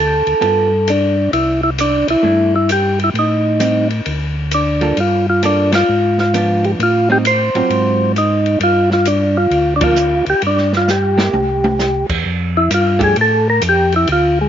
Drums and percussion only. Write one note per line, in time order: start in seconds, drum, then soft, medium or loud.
0.27 ride soft
0.42 ride soft
0.87 hi-hat pedal medium
0.87 ride medium
1.33 ride medium
1.78 hi-hat pedal soft
1.78 ride medium
2.08 ride medium
2.69 hi-hat pedal medium
2.69 ride medium
2.99 ride soft
3.15 ride medium
3.60 hi-hat pedal medium
3.60 ride medium
3.90 ride soft
4.06 ride medium
4.51 hi-hat pedal medium
4.51 ride medium
4.81 ride soft
4.97 ride medium
5.43 hi-hat pedal soft
5.43 ride medium
5.72 snare medium
5.72 ride medium
6.18 snare soft
6.34 hi-hat pedal soft
6.34 ride medium
6.64 ride soft
6.80 ride medium
7.25 hi-hat pedal medium
7.25 ride medium
7.55 ride soft
7.70 ride soft
8.16 hi-hat pedal medium
8.16 ride medium
8.46 ride soft
8.61 ride medium
8.91 snare soft
9.05 hi-hat pedal medium
9.05 ride medium
9.51 ride soft
9.81 kick medium
9.81 ride medium
9.96 hi-hat pedal medium
10.26 ride soft
10.42 ride medium
10.58 snare soft
10.73 snare soft
10.88 snare soft
10.88 hi-hat pedal soft
11.18 snare medium
11.33 high tom medium
11.64 high tom medium
11.79 snare soft
11.79 hi-hat pedal soft
12.09 kick medium
12.09 crash medium
12.71 hi-hat pedal medium
12.71 ride medium
13.01 kick medium
13.01 ride soft
13.16 ride medium
13.61 hi-hat pedal medium
13.61 ride medium
13.92 ride soft
14.07 ride medium